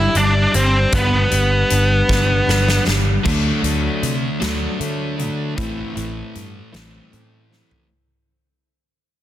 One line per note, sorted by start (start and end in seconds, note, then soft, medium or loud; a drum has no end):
0.00 0.53 G2 medium
0.00 0.52 G3 medium
0.00 0.13 D4 medium
0.00 0.17 E4 loud
0.15 0.45 G1 medium
0.15 1.69 D4 medium
0.15 0.55 D4 medium
0.15 closed hi-hat medium
0.53 0.84 G1 medium
0.53 1.30 G3 medium
0.53 0.94 C4 medium
0.53 closed hi-hat medium
0.92 1.23 G1 medium
0.92 2.86 G2 medium
0.92 2.83 B3 medium
0.92 kick loud
0.92 closed hi-hat medium
1.31 1.62 G1 medium
1.31 2.85 G3 medium
1.31 closed hi-hat medium
1.70 2.01 G1 medium
1.70 2.45 D4 medium
1.70 closed hi-hat medium
2.08 2.39 G1 medium
2.08 3.25 B3 medium
2.08 kick medium
2.08 snare medium
2.47 2.78 G1 medium
2.47 3.24 D4 medium
2.47 snare medium
2.68 snare medium
2.86 3.17 G1 medium
2.86 3.24 G3 medium
2.86 snare medium
3.24 3.49 D2 medium
3.24 3.63 D3 medium
3.24 3.63 F#3 medium
3.24 3.63 A3 medium
3.24 3.62 D4 medium
3.24 kick loud
3.24 crash medium
3.63 3.87 D2 medium
3.63 4.14 D3 medium
3.63 4.14 F#3 medium
3.63 4.14 A3 medium
3.63 4.14 D4 medium
3.63 closed hi-hat medium
4.03 4.26 C3 medium
4.03 closed hi-hat medium
4.40 4.65 D2 medium
4.40 4.79 D3 medium
4.40 4.79 F#3 medium
4.40 4.79 A3 medium
4.40 4.79 D4 medium
4.40 snare loud
4.40 closed hi-hat medium
4.80 5.18 D3 medium
4.80 5.28 D3 medium
4.80 5.18 F#3 medium
4.80 5.17 A3 medium
4.80 5.17 D4 medium
4.80 closed hi-hat medium
5.18 5.56 D3 medium
5.18 5.57 F#3 medium
5.18 5.56 A3 medium
5.18 5.57 D4 medium
5.18 closed hi-hat medium
5.56 5.82 A1 medium
5.56 6.70 A2 medium
5.56 5.95 E3 medium
5.56 5.95 A3 medium
5.56 5.95 C4 medium
5.56 5.94 E4 loud
5.56 kick loud
5.56 closed hi-hat medium
5.95 6.20 A1 medium
5.95 6.46 E3 medium
5.95 6.46 A3 medium
5.95 6.46 C4 medium
5.95 6.46 E4 medium
5.95 closed hi-hat soft
6.35 6.59 G2 medium
6.35 closed hi-hat soft
6.72 6.98 A1 medium
6.72 7.88 A2 medium
6.72 7.10 E3 medium
6.72 7.11 A3 medium
6.72 7.11 C4 medium
6.72 7.11 E4 medium
6.72 snare loud
6.72 closed hi-hat medium
7.12 7.61 A2 medium
7.12 7.50 E3 medium
7.12 7.50 A3 medium
7.12 7.49 C4 medium
7.12 7.49 E4 medium
7.12 closed hi-hat medium
7.50 7.90 E3 medium
7.50 7.89 A3 medium
7.50 7.89 C4 medium
7.50 7.89 E4 medium
7.50 snare soft
7.71 floor tom medium